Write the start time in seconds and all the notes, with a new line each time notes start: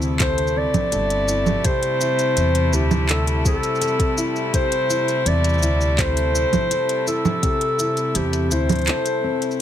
Already playing: D2 C3 G3 A3 C4 E4 C5
0.02 shaker
0.20 A4 C5, kick, clap, closed hi-hat, shaker
0.38 closed hi-hat
0.47 shaker
0.56 C4 D5
0.74 kick, closed hi-hat, low conga, shaker
0.92 G1 A4, closed hi-hat, shaker
1.10 closed hi-hat, shaker
1.28 E4, shaker
1.46 low conga, shaker
1.64 C3 C5, kick, closed hi-hat, shaker
1.83 closed hi-hat, shaker
2.01 E4, shaker
2.19 closed hi-hat, shaker
2.37 E2 C4, closed hi-hat, shaker
2.55 closed hi-hat, shaker
2.73 D2 E4 G4, shaker
2.91 low conga, shaker
3.09 A4, clap, closed hi-hat, shaker
3.27 closed hi-hat, shaker
3.45 C4 A4, kick, shaker
3.63 closed hi-hat, shaker
3.75 shaker
3.81 A4, closed hi-hat, shaker
3.99 kick, closed hi-hat, shaker
4.17 E4, shaker
4.36 shaker
4.54 C3 C5, kick, closed hi-hat, shaker
4.72 closed hi-hat, shaker
4.90 E4, shaker
5.08 closed hi-hat, shaker
5.26 E2 C4 D5, closed hi-hat, shaker
5.44 closed hi-hat, shaker
5.49 shaker
5.54 shaker
5.58 E4, shaker
5.62 D2, shaker
5.81 shaker
5.98 A4 C5, kick, clap, closed hi-hat, shaker
6.17 closed hi-hat, shaker
6.34 C4, shaker
6.53 kick, closed hi-hat, low conga, shaker
6.71 A4, closed hi-hat, shaker
6.89 closed hi-hat, shaker
7.07 E4 A4, shaker
7.25 low conga, shaker
7.43 C3, kick, closed hi-hat, shaker
7.61 closed hi-hat
7.79 E4, shaker
7.97 closed hi-hat, shaker
8.15 E2 C4 G4, closed hi-hat, shaker
8.33 closed hi-hat, shaker
8.51 D2 E4 C5, shaker
8.69 closed hi-hat, low conga, shaker
8.72 closed hi-hat
8.76 closed hi-hat
8.79 closed hi-hat
8.82 closed hi-hat
8.85 clap, closed hi-hat
8.88 A4, closed hi-hat
9.06 closed hi-hat, shaker
9.24 C4
9.42 closed hi-hat, shaker
9.51 shaker